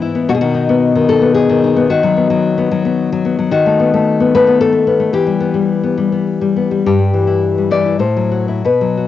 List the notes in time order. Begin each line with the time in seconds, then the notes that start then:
Already playing: G#2 E3 B3 B4
0.02 E4
0.15 B3
0.29 B2 F#4
0.35 G#4
0.41 D#3 F#4
0.54 D#4
0.69 B3
0.96 D#3
1.09 D#4 A4
1.22 B3
1.34 G#4
1.50 D#3
1.64 D#4
1.76 B3
1.90 D#3 F#4
2.03 F#3
2.17 B3
2.30 F#3
2.58 B3
2.71 F#3
2.85 B3
3.12 F#3
3.25 B3
3.39 F#3
3.51 D#3 F#4
3.66 A3
3.80 B3
3.94 A3
4.20 B3
4.34 A3 B4
4.47 B3
4.61 A4
4.73 A3
4.87 B3
5.00 A3
5.13 E3 G4
5.27 G3
5.40 B3
5.54 G3
5.83 B3
5.98 G3
6.12 B3
6.41 G3
6.56 B3
6.71 G3
6.86 G2 G4
6.99 G3
7.14 E3
7.27 E4
7.58 G3
7.71 E3 D5
7.86 E4
7.99 A2 C5
8.16 F#3
8.31 F#4
8.48 E4
8.65 B2 B4
8.81 F#3
8.97 F#4